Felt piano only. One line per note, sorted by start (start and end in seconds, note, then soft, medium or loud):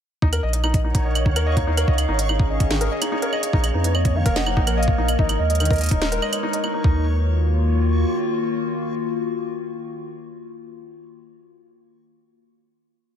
0.22 0.27 D#4 loud
0.33 0.40 A#4 loud
0.43 0.51 D#5 medium
0.53 0.61 D#5 medium
0.64 0.71 D#4 medium
0.74 0.79 D#5 medium
0.84 0.92 D#4 medium
0.95 1.02 D#4 medium
1.05 1.13 D#5 medium
1.15 1.23 D#5 medium
1.26 1.36 D#3 medium
1.36 1.44 A#4 loud
1.46 1.54 D#5 loud
1.57 1.64 D#4 medium
1.67 1.72 D#4 loud
1.77 1.85 A#4 loud
1.88 1.95 D#5 loud
1.98 2.06 D#5 medium
2.09 2.16 D#4 medium
2.19 2.23 D#5 medium
2.29 2.37 D#4 medium
2.40 2.47 D#4 medium
2.50 2.57 D#5 medium
2.60 2.68 D#5 medium
2.71 2.80 D#3 medium
2.81 2.89 A#4 loud
2.91 2.99 D#5 loud
3.02 3.09 D#4 medium
3.12 3.17 D#4 loud
3.22 3.30 A#4 loud
3.33 3.40 D#5 loud
3.43 3.51 D#5 medium
3.53 3.61 D#4 loud
3.64 3.68 D#5 medium
3.74 3.82 D#4 medium
3.84 3.92 D#4 medium
3.95 4.02 D#5 medium
4.05 4.13 D#5 medium
4.15 4.25 D#3 medium
4.26 4.33 A#4 loud
4.36 4.44 D#5 loud
4.46 4.54 D#4 medium
4.57 4.61 D#4 loud
4.67 4.75 A#4 loud
4.77 4.85 D#5 loud
4.98 5.06 D#4 loud
5.08 5.13 D#5 medium
5.19 5.26 D#4 medium
5.29 5.37 D#4 medium
5.40 5.47 D#5 medium
5.50 5.57 D#5 medium
5.60 5.70 D#3 medium
5.71 5.78 A#4 loud
5.81 5.89 D#5 loud
5.91 5.99 D#4 medium
6.02 6.06 D#4 loud
6.12 6.20 A#4 loud
6.22 6.30 D#5 loud
6.33 6.40 D#5 medium
6.43 6.51 D#4 loud
6.53 6.58 D#5 medium
6.64 6.71 D#4 medium
6.74 6.82 D#4 medium
6.84 7.04 D#4 medium